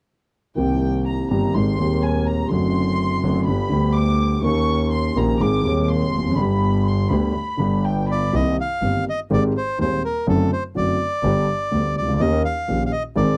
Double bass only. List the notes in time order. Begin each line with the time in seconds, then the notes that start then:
0.57 C2
1.30 G1
1.55 G#1
1.79 D#2
2.51 F#1
3.22 F#1
3.47 G1
3.70 D2
4.43 D#2
5.15 A#1
5.40 G#1
5.64 D#2
6.13 F1
6.37 G1
7.10 D2
7.59 G1
8.33 C2
8.82 G1
9.31 G#1
9.79 D#2
10.28 F#1
10.76 F#1
11.23 G1
11.72 D2
11.96 C#2
12.20 D#2
12.69 A#1
13.16 G#1